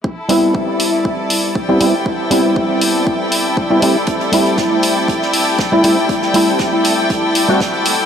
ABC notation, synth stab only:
X:1
M:4/4
L:1/16
Q:"Swing 16ths" 1/4=119
K:Am
V:1 name="Synth stab"
z2 [G,B,CE]8- [G,B,CE]3 [G,B,CE] [G,B,CE] z | z2 [G,B,CE]8- [G,B,CE]3 [G,B,CE] [G,A,CE] z | z2 [G,A,CE]8- [G,A,CE]3 [G,A,CE] [G,A,CE] z | z2 [G,A,CE]8- [G,A,CE] [G,A,C^F] z4 |]